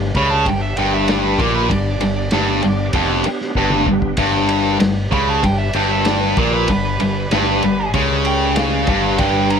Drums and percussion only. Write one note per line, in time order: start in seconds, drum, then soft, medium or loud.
0.15 kick medium
0.15 ride medium
0.46 kick medium
0.46 ride medium
0.77 ride medium
1.08 snare loud
1.08 ride medium
1.39 kick loud
1.39 snare soft
1.39 ride medium
1.70 kick medium
1.70 ride medium
2.01 ride medium
2.31 snare loud
2.31 ride medium
2.62 ride medium
2.93 kick loud
2.93 ride medium
3.24 ride medium
3.41 snare soft
3.55 kick medium
3.70 mid tom medium
3.86 kick medium
4.02 kick medium
4.17 kick medium
4.17 ride loud
4.49 ride medium
4.80 snare loud
4.80 ride medium
5.12 kick medium
5.12 ride medium
5.43 kick medium
5.43 ride medium
5.73 ride medium
6.05 snare loud
6.05 ride medium
6.37 kick loud
6.37 ride medium
6.68 kick medium
6.68 ride medium
7.00 ride medium
7.31 snare loud
7.31 ride medium
7.63 ride medium
7.94 kick loud
7.94 ride medium
8.25 ride medium
8.56 snare loud
8.56 ride medium
8.87 kick loud
8.87 ride medium
9.18 kick loud
9.18 ride medium
9.50 ride medium